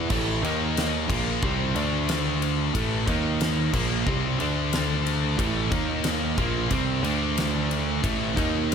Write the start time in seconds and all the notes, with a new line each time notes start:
0.10 A1 A2 E3 A3, kick, crash
0.43 D#2 D#3 A#3 D#4, ride
0.77 snare, ride
1.09 A#1 A#2 F3 A#3, kick, crash
1.43 C2 C3 G3 C4, kick
1.75 D2 D3 A3 D4, ride
2.09 snare, ride
2.42 ride
2.73 A1 A2 E3 A3, kick, ride
3.06 D#2 D#3 A#3 D#4, kick, ride
3.41 snare, ride
3.73 A#1 A#2 F3 A#3, kick, snare, crash
4.05 C2 C3 G3 C4, kick
4.39 D2 D3 A3 D4, ride
4.73 snare, ride
5.07 ride
5.38 A1 A2 E3 A3, kick, ride
5.71 D#2 D#3 A#3 D#4, kick, ride
6.04 snare, ride
6.38 A#1 A#2 F3 A#3, kick, ride
6.70 C2 C3 G3 C4, kick, ride
7.03 D2 D3 A3 D4, ride
7.38 snare, ride
7.71 ride
8.04 A1 A2 E3 A3, kick, ride
8.36 D#2 D#3 A#3 D#4, kick, ride